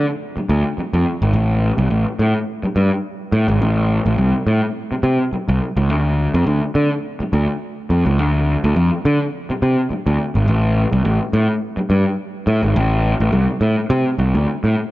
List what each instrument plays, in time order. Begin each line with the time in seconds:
0.37 muted picked electric bass stroke
0.49 picked electric bass D2
0.78 muted picked electric bass stroke
0.93 picked electric bass F2
1.22 picked electric bass G#1
1.33 picked electric bass A1
1.78 picked electric bass C2
1.90 picked electric bass A1
2.19 picked electric bass A2
2.63 muted picked electric bass stroke
2.76 picked electric bass G2
3.32 picked electric bass A2
3.48 picked electric bass G#1
3.62 picked electric bass A1
4.06 picked electric bass A1
4.18 picked electric bass C2
4.47 picked electric bass A2
4.92 muted picked electric bass stroke
5.03 picked electric bass C3
5.33 muted picked electric bass stroke
5.49 picked electric bass C2
5.77 picked electric bass C#2
5.90 picked electric bass D2
6.34 picked electric bass F2
6.47 picked electric bass D2
6.75 picked electric bass D3
7.20 muted picked electric bass stroke
7.33 picked electric bass D2
7.90 picked electric bass F2
8.06 picked electric bass C#2
8.19 picked electric bass D2
8.64 picked electric bass D2
8.76 picked electric bass F2
9.05 picked electric bass D3
9.50 muted picked electric bass stroke
9.62 picked electric bass C3
9.90 muted picked electric bass stroke
10.07 picked electric bass D2
10.35 picked electric bass G#1
10.48 picked electric bass A1
10.93 picked electric bass C2
11.05 picked electric bass A1
11.33 picked electric bass A2
11.77 muted picked electric bass stroke
11.90 picked electric bass G2
12.47 picked electric bass A2
12.63 picked electric bass G#1
12.76 picked electric bass A1
13.20 picked electric bass A1
13.32 picked electric bass C2
13.61 picked electric bass A2
13.90 picked electric bass C3
14.19 picked electric bass C2
14.35 picked electric bass D2
14.64 picked electric bass A2